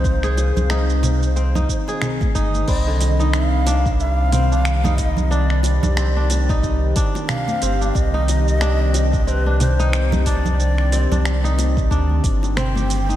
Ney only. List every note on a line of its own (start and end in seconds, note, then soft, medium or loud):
0.00 1.98 C5 medium
2.68 2.80 D5 loud
2.80 3.30 D#5 loud
3.33 3.95 F5 loud
4.00 4.12 E5 loud
4.12 4.99 F5 loud
4.98 5.33 D#5 loud
5.31 5.64 D5 medium
5.65 6.59 D5 medium
7.29 7.96 F5 loud
7.95 9.30 D#5 loud
9.28 9.60 B4 loud
9.28 9.32 C5 medium
9.61 10.22 C5 loud
10.26 11.54 D5 medium
12.57 13.16 G5 loud